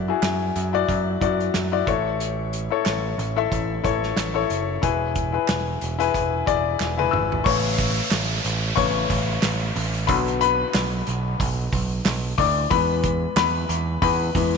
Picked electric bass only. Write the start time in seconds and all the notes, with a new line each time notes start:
Already playing: F#2
0.22 F#2
0.56 F#2
0.89 F#2
1.21 F#2
1.55 F#2
1.87 A1
2.86 A1
3.18 A1
3.52 A1
3.84 A1
4.17 A1
4.50 F#1
4.83 E1
5.49 E1
5.82 E1
6.15 E1
6.47 E1
6.80 E1
7.13 G#1
7.46 A1
8.11 A1
8.45 A1
8.77 A1
9.10 A1
9.44 A1
9.76 A1
10.09 B1
10.75 B1
11.07 B1
11.40 B1
11.72 B1
12.06 B1
12.38 D2
12.71 E2
13.36 E2
13.69 E2
14.02 E2
14.35 E2